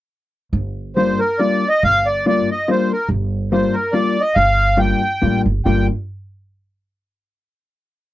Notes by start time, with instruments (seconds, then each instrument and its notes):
0.53 upright bass G1
0.96 hollow-body jazz guitar G3 A#3 D4 F4, accordion C5
1.19 accordion A#4
1.39 hollow-body jazz guitar G3 A#3 D4 F4, accordion D5
1.69 accordion D#5
1.83 upright bass G1, accordion F5
2.06 accordion D5
2.26 hollow-body jazz guitar G3 A#3 D4 F4, accordion D5
2.51 accordion D#5
2.68 hollow-body jazz guitar G3 A#3 D4 F4, accordion C5
2.92 accordion A#4
3.09 upright bass G1
3.52 hollow-body jazz guitar G3 A#3 D4 F4, accordion C5
3.73 accordion A#4
3.92 hollow-body jazz guitar G3 A#3 D4 F4, accordion D5
4.20 accordion D#5
4.35 upright bass G1, accordion F5
4.77 hollow-body jazz guitar G3 A#3 D4 F4, accordion G5
5.22 upright bass A1, hollow-body jazz guitar G3 A#3 D4 F4
5.46 upright bass G1
5.65 upright bass G1, hollow-body jazz guitar G3 A#3 D4 F4, accordion G5